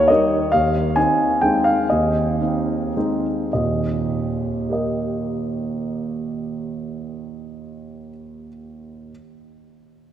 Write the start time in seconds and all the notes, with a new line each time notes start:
Already playing: D#2 A#3 D#4 A#4 C#5
0.08 G3 A#3 D#4 D#5
0.52 D#2 F5
0.96 C4 D#4 G#5
1.41 G#3 C4 D#4 G5
1.64 F5
1.90 D#2 D#5
2.41 C4 D#4
2.97 G#3 C4 D#4
3.53 D#2 A#2 D#5
4.69 G4 A#4 D#5